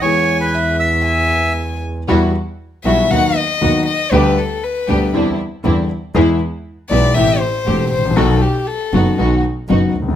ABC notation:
X:1
M:4/4
L:1/16
Q:1/4=118
K:E
V:1 name="Violin"
g4 e4 g6 z2 | [K:Em] z6 e2 f2 ^d4 d2 | B2 A2 B4 z8 | z6 d2 e2 c4 c2 |
A2 G2 A4 z8 |]
V:2 name="Bandoneon"
c3 B3 e6 z4 | [K:Em] z16 | z16 | z16 |
z16 |]
V:3 name="String section"
z16 | [K:Em] [G,EF]2 z4 [G,EF]2 [B,^DF]2 z2 [B,DF]2 z2 | [B,DG]2 z4 [B,DG]2 [CDE]2 z2 [CDE]2 z2 | [^G,B,E]2 z4 [G,B,E]2 [A,C=G]2 z2 [A,CG]2 z2 |
[B,^DF]2 z4 [B,DF]2 [B,DF]2 z2 [B,DF]2 z2 |]
V:4 name="Grand piano" clef=bass
[E,,E,G,B,G]16 | [K:Em] [E,,E,G,B,F]2 z4 [B,,,B,,E,G,B,F]2 [^D,,^D,F,B,F]2 z2 [D,,D,F,B,F]2 z2 | [D,,D,G,B,G]2 z4 [D,,D,G,B,G]2 [E,,D,E,G,CE]2 z2 [E,,D,E,G,CE]2 z2 | [E,,E,^G,B,^G]2 z4 [B,,,B,,E,G,B,G]2 [A,,,A,,E,A,C=G]2 z2 [E,,,E,,E,A,CG]2 z/2 ^G,,,/2 A,,,/2 ^A,,,/2 |
[B,,,B,,^D,F,B,F]2 z4 [F,,,F,,D,F,B,F]2 [B,,,B,,D,F,B,F]2 z2 [F,,,F,,D,F,B,F]2 z/2 ^C,,/2 =D,,/2 z/2 |]
V:5 name="Double bass" clef=bass
E,,16 | [K:Em] E,,2 z4 B,,,2 ^D,,2 z2 D,,2 z2 | D,,2 z4 D,,2 E,,2 z2 E,,2 z2 | E,,2 z4 B,,,2 A,,,2 z2 E,,,2 A,,,2 |
B,,,2 z4 F,,,2 B,,,2 z2 F,,,2 D,,2 |]